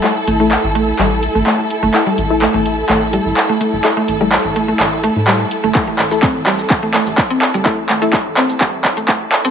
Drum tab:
HH |--x---x---x---x-|--x---x---x---x-|--x---x---x---x-|--x---x---x---x-|
SH |----------------|----------------|----------------|x--xx--xx--xx--x|
CP |x---x---x---x---|x---x---x---x---|x---x---x---x---|x-x-x-x-x-x-x-x-|
BD |----------------|----------------|----------------|o---o---o---o---|

HH |--x---x---x---x-|
SH |x--xx--xx--xx--x|
CP |x-x-x-x-x-x-x-x-|
BD |o---o---o-o-o---|